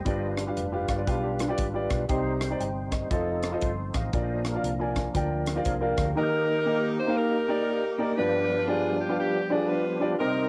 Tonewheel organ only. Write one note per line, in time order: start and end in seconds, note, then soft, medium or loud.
0.00 0.36 C5 medium
0.00 0.36 D#5 medium
0.06 2.06 G3 medium
0.06 2.06 D4 medium
0.06 2.06 F4 medium
0.06 2.06 B4 medium
2.10 3.10 G3 medium
2.10 3.10 C4 medium
2.10 3.10 D#4 medium
2.10 3.10 C5 medium
3.13 4.12 F3 medium
3.13 4.12 C4 medium
3.13 4.12 D#4 medium
3.13 3.62 A4 medium
3.63 3.94 A4 medium
3.63 3.93 C5 medium
3.95 4.43 C5 medium
3.95 4.43 D#5 medium
4.13 6.12 F3 medium
4.13 6.12 A#3 medium
4.13 6.12 D4 medium
4.13 6.12 A#4 medium
6.17 8.15 A#3 medium
6.17 8.14 D#4 medium
6.17 6.24 F#4 medium
6.23 8.17 G4 medium
8.18 10.16 F3 medium
8.18 10.15 G3 medium
8.18 10.15 B3 medium
8.18 10.15 D4 medium
8.18 10.16 G4 medium
10.20 10.49 G3 medium
10.20 10.49 C4 medium
10.20 10.49 D#4 medium